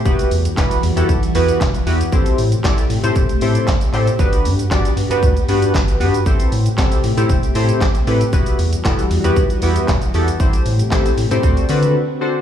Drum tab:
HH |-xox-xox-xox-xox|-xox-xox-xox-xox|-xox-xox-xox-xox|-xox-xox-xox-xox|
SH |xxxxxxxxxxxxxxxx|xxxxxxxxxxxxxxxx|xxxxxxxxxxxxxxxx|xxxxxxxxxxxxxxxx|
CP |----x-------x---|----x-------x-x-|----x-------x---|----x-------x---|
SD |----o-------o---|----o-------o---|----o-------o---|----o-------o---|
BD |o---o---o---o---|o---o---o---o---|o---o---o---o---|o---o---o---o---|

HH |-xox-xox-xox-xox|-xox-xox-xox----|
SH |xxxxxxxxxxxxxxxx|xxxxxxxxxxxx----|
CP |----x-------x---|----x-----------|
SD |----o-------o---|----o-----------|
BD |o---o---o---o---|o---o---o-------|